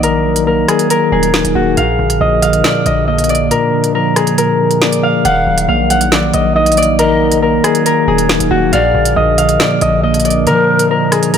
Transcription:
Already playing: 808-style bass A#1, tine electric piano D#3 F#3 A#3 D#4, analog synth pad F#3 A#3 D#4 A#4, harp D5 F#5
0.03 tine electric piano D#3, harp A#4, closed hi-hat
0.25 tine electric piano F#3
0.36 closed hi-hat
0.47 tine electric piano A#3, harp A#4
0.68 tine electric piano F#3, harp G#4, cross-stick, closed hi-hat
0.79 closed hi-hat
0.90 tine electric piano D#3, harp A#4, closed hi-hat
1.12 808-style bass D#1, tine electric piano F#3, harp G#4
1.23 closed hi-hat
1.34 tine electric piano D#4, snare
1.45 808-style bass D#1, closed hi-hat
1.55 808-style bass D#1, tine electric piano A#3, harp F#4
1.77 808-style bass A#1, tine electric piano A#2, analog synth pad F3 A#3 D4 A#4, harp F5, closed hi-hat
1.99 808-style bass A#1, tine electric piano D3
2.10 closed hi-hat
2.21 808-style bass A#1, tine electric piano F3, harp D#5
2.42 tine electric piano D3, harp F5, closed hi-hat
2.53 closed hi-hat
2.64 tine electric piano A#2, harp D5, snare
2.86 808-style bass A#1, tine electric piano D3, harp D#5, closed hi-hat
3.08 tine electric piano A#3, harp D#5
3.19 closed hi-hat
3.24 closed hi-hat
3.29 tine electric piano F3, harp D5, closed hi-hat
3.35 closed hi-hat
3.51 tine electric piano A#2, harp A#4, closed hi-hat
3.73 tine electric piano D3
3.84 closed hi-hat
3.94 tine electric piano F3, harp A#4
4.16 tine electric piano D3, harp G#4, cross-stick, closed hi-hat
4.27 closed hi-hat
4.38 tine electric piano A#2, harp A#4, closed hi-hat
4.60 tine electric piano D3
4.71 closed hi-hat
4.82 tine electric piano A#3, harp D5, snare
4.93 closed hi-hat
5.03 tine electric piano F3, harp F5
5.25 808-style bass D#1, tine electric piano D#3, analog synth pad F#3 A#3 D#4 A#4, pan flute F5, harp F#5, closed hi-hat
5.47 808-style bass D#1, tine electric piano F#3
5.58 closed hi-hat
5.68 808-style bass A#1, tine electric piano A#3, harp F5
5.90 tine electric piano F#3, harp F#5, closed hi-hat
6.01 closed hi-hat
6.12 tine electric piano D#3, harp D5, snare
6.34 808-style bass A#1, tine electric piano F#3, harp D#5, closed hi-hat
6.56 tine electric piano D#4, harp D#5
6.66 closed hi-hat
6.72 closed hi-hat
6.77 tine electric piano A#3, harp D5, closed hi-hat
6.83 closed hi-hat
6.99 tine electric piano D#3, harp A#4, pan flute D#5, closed hi-hat
7.21 tine electric piano F#3
7.32 closed hi-hat
7.42 tine electric piano A#3, harp A#4
7.64 tine electric piano F#3, harp G#4, cross-stick, closed hi-hat
7.75 closed hi-hat
7.86 tine electric piano D#3, harp A#4, closed hi-hat
8.08 808-style bass D#1, tine electric piano F#3, harp G#4
8.18 closed hi-hat
8.29 tine electric piano D#4, snare
8.40 808-style bass D#1, closed hi-hat
8.51 808-style bass D#1, tine electric piano A#3, harp F#4
8.73 808-style bass A#1, tine electric piano A#2, analog synth pad F3 D4, pan flute D5, harp F5, closed hi-hat
8.95 808-style bass A#1, tine electric piano D3
9.05 closed hi-hat
9.16 808-style bass A#1, tine electric piano F3, harp D#5
9.38 tine electric piano D3, harp F5, closed hi-hat
9.49 closed hi-hat
9.60 tine electric piano A#2, harp D5, snare
9.81 808-style bass A#1, tine electric piano D3, harp D#5, closed hi-hat
10.03 tine electric piano A#3, harp D#5
10.14 closed hi-hat
10.20 closed hi-hat
10.25 tine electric piano F3, harp D5, closed hi-hat
10.30 closed hi-hat
10.47 tine electric piano A#2, 808-style bass F3, pan flute A#4, harp A#4, closed hi-hat
10.69 tine electric piano D3
10.79 closed hi-hat
10.90 tine electric piano F3, harp A#4
11.12 tine electric piano D3, harp G#4, cross-stick, closed hi-hat
11.23 closed hi-hat
11.34 tine electric piano A#2, harp A#4, closed hi-hat

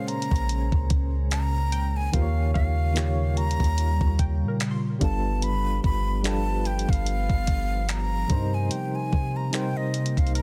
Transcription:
Already playing: synth keys A#2 A#3 C#4 G#4 C5, ambient pad C#3 G#3 C#4
0.08 flute A#5, closed hi-hat
0.22 closed hi-hat
0.31 808-style bass A#1, kick
0.36 closed hi-hat
0.49 closed hi-hat
0.72 808-style bass C#2, kick
0.90 kick, closed hi-hat
1.31 flute A#5, clap, closed hi-hat
1.72 synth pluck G5, closed hi-hat
1.96 flute G#5
2.12 808-style bass D#2, ambient pad C#3 G3 F4, synth keys D#3 A#3 F4 G4 C5, flute F5, kick, closed hi-hat
2.22 synth keys C#5
2.54 808-style bass D#2, synth pluck F5, flute F5, kick
2.94 synth keys D#3 A#3 F4 G4, clap, closed hi-hat
2.98 synth keys C#5
3.37 flute A#5, closed hi-hat
3.51 closed hi-hat
3.60 808-style bass D#2, kick
3.64 closed hi-hat
3.78 closed hi-hat
4.01 808-style bass D#2, kick
4.19 synth pluck G5, kick, closed hi-hat
4.43 808-style bass A#2
4.48 synth pluck A#4
4.60 clap, closed hi-hat
4.71 synth pluck C6
4.99 808-style bass G1, ambient pad F3 B3 G4, synth keys G3 B3 D4 F4 A4, flute A5, kick, closed hi-hat
5.42 flute B5, closed hi-hat
5.84 808-style bass G1, flute B5, kick
6.23 synth keys G3 D4 F4 A4 B4, synth pluck G5, flute A5, clap, closed hi-hat
6.65 flute G5, closed hi-hat
6.79 closed hi-hat
6.89 808-style bass G1, flute F5, kick
6.93 closed hi-hat
7.06 closed hi-hat
7.30 808-style bass G1, kick
7.47 kick, closed hi-hat
7.89 flute A#5, clap, closed hi-hat
8.28 808-style bass G2, synth keys C3 G3 D4 A#4, ambient pad C3 A#3 D#4, kick, closed hi-hat
8.32 synth keys C5
8.36 synth keys D#4
8.54 flute G#5
8.71 flute G5, closed hi-hat
8.95 flute G#5
9.13 808-style bass C3, kick
9.36 flute A#5
9.51 synth keys C3 G3 D#4 A#4, flute G5, clap, closed hi-hat
9.55 synth keys C5
9.77 flute D#5
9.94 closed hi-hat
10.06 closed hi-hat
10.17 808-style bass C2, flute F5, kick, closed hi-hat
10.27 closed hi-hat
10.35 synth pluck A#4, flute A#5, closed hi-hat

